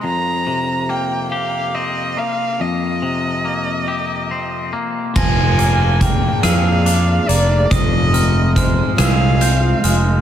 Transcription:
<<
  \new Staff \with { instrumentName = "Glockenspiel" } { \time 6/8 \key c \minor \tempo 4. = 47 r2. | r2. | bes'''4 aes''''8 f'''8 d'''4 | ees'''8 f'''8 f'''4 g'''8 f'''8 | }
  \new Staff \with { instrumentName = "Violin" } { \time 6/8 \key c \minor bes''4 g''8 f''8 ees''8 f''8 | ees''2~ ees''8 r8 | aes''4 g''8 f''4 d''8 | ees''4 c''8 f''4 r8 | }
  \new Staff \with { instrumentName = "Analog synth pad" } { \time 6/8 \key c \minor r2. | r2. | <bes aes' d''>2. | <aes f' ees''>2. | }
  \new Staff \with { instrumentName = "Clean electric guitar" } { \time 6/8 \key c \minor f,8 c8 bes8 g'8 c'8 bes8 | f,8 c8 bes8 g'8 c'8 bes8 | f8 bes8 bes8 aes'8 d'8 bes8 | f,8 c8 aes8 aes'8 c'8 aes8 | }
  \new Staff \with { instrumentName = "Fingered electric bass" } { \clef bass \time 6/8 \key c \minor r2. | r2. | f,,4. f,4 f,,8 | f,,4. c,4 f,,8 | }
  \new DrumStaff \with { instrumentName = "Drums" } \drummode { \time 6/8 r4. r4. | r4. r4. | <cymc bd>8 hh8 <hh bd>8 <hh ss>8 hh8 hh8 | <hh bd>8 hh8 <hh bd>8 <hh ss>8 hh8 hh8 | }
>>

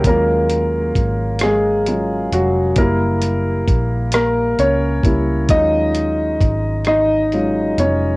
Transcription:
<<
  \new Staff \with { instrumentName = "Grand piano" } { \time 6/8 \key ees \minor \tempo 4. = 44 <bes bes'>4. <aes aes'>4 <ges ges'>8 | bes'4. <bes bes'>8 <des' des''>4 | <ees' ees''>4. <ees' ees''>4 <des' des''>8 | }
  \new Staff \with { instrumentName = "Grand piano" } { \time 6/8 \key ees \minor <ges aes des' f'>8 r4. <ges aes des' f'>8 r8 | <g bes fes'>8 r2 <g bes fes'>8 | <ges aes des' f'>2 <ges aes des' f'>8 r8 | }
  \new Staff \with { instrumentName = "Fingered electric bass" } { \clef bass \time 6/8 \key ees \minor ees,4 aes,,4. f,,8 | ges,,4 bes,,4 des,8 des,8 | ees,4 aes,,4. f,,8 | }
  \new DrumStaff \with { instrumentName = "Drums" } \drummode { \time 6/8 <hh bd>8 hh8 <hh bd>8 <hh ss>8 hh8 hh8 | <hh bd>8 hh8 <hh bd>8 <hh ss>8 hh8 <hh bd>8 | <hh bd>8 hh8 <hh bd>8 <hh ss>8 hh8 hh8 | }
>>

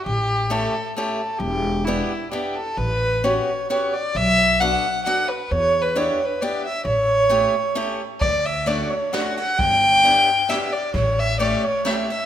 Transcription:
<<
  \new Staff \with { instrumentName = "Violin" } { \time 3/4 \key a \mixolydian \tempo 4 = 132 g'4 a'4 a'4 | g'4 e'4 g'8 a'8 | b'4 cis''4 cis''8 d''8 | e''4 fis''4 fis''8 b'8 |
\tuplet 3/2 { cis''4 b'8 cis''4 b'8 } d''8 e''8 | cis''2~ cis''8 r8 | d''8 e''8 d''8 cis''8 fis''8 fis''8 | g''2 e''8 d''8 |
cis''8 e''8 d''8 cis''8 e''8 e''8 | }
  \new Staff \with { instrumentName = "Steel-string acoustic guitar" } { \time 3/4 \key a \mixolydian r4 <a cis' e' g'>8 r8 <a cis' e' g'>8 r8 | r4 <b d' e' g'>8 r8 <b d' e' g'>8 r8 | r4 <b cis' fis' g'>8 r8 <b cis' fis' g'>8 r8 | r4 <b d' fis' a'>8 r8 <b d' fis' a'>8 r8 |
r4 <b d' e' g'>8 r8 <b d' e' g'>8 r8 | r4 <a cis' e' g'>8 r8 <a cis' e' g'>8 r8 | r4 <a cis' d' fis'>8 r8 <a cis' d' fis'>8 r8 | r4 <b d' e' g'>8 r8 <b d' e' g'>8 r8 |
r4 <a cis' e' g'>8 r8 <a cis' e' g'>8 r8 | }
  \new Staff \with { instrumentName = "Upright bass" } { \clef bass \time 3/4 \key a \mixolydian a,,2 r4 | e,,2 r4 | a,,2 r4 | b,,2 r4 |
e,2 r4 | a,,2 r4 | d,2 r4 | g,,2 r4 |
a,,2 r4 | }
  \new DrumStaff \with { instrumentName = "Drums" } \drummode { \time 3/4 r4 r4 r4 | r4 r4 r4 | r4 r4 r4 | r4 r4 r4 |
r4 r4 r4 | r4 r4 r4 | <bd cymr>4 cymr4 <cymr sn>8 cymr8 | <bd cymr>4 cymr4 <cymr sn>4 |
<bd cymr>4 cymr4 <cymr sn>8 cymr8 | }
>>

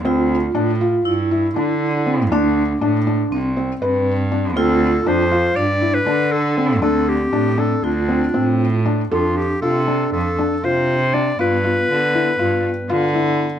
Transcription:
<<
  \new Staff \with { instrumentName = "Clarinet" } { \time 9/8 \key d \dorian \tempo 4. = 80 r1 r8 | r1 r8 | a'4 c''4 d''8. b'8. a'8 a'8 | a'8 g'4 a'8 d'2 r8 |
f'8 g'8 a'4 a'4 c''4 d''8 | b'1 r8 | }
  \new Staff \with { instrumentName = "Felt piano" } { \time 9/8 \key d \dorian c'4 d'8 f'4 e'8 d'4 c'8 | d'4 d'8 d'4 c'8 b'4 d'8 | c'4 d'8 f'4 e'8 d'4 c'8 | d'4 d'8 d'4 c'8 c'4 d'8 |
a'4 f'8 d'4 d'8 f'4 d'8 | f'8 f'4 e'8 f'4 f'8 e'4 | }
  \new Staff \with { instrumentName = "Vibraphone" } { \time 9/8 \key d \dorian f'2 e'2~ e'8 | d'2 c'2~ c'8 | f'2 d'2~ d'8 | c'2 f'2 r8 |
d'1~ d'8 | b1~ b8 | }
  \new Staff \with { instrumentName = "Cello" } { \clef bass \time 9/8 \key d \dorian d,4 a,4 g,4 d4. | d,4 a,4 c,4 g,4. | d,4 f,4 g,4 d4. | d,4 a,4 d,4 a,4. |
f,4 c4 f,8 r8 c4. | g,4 d4 g,8 r8 d4. | }
>>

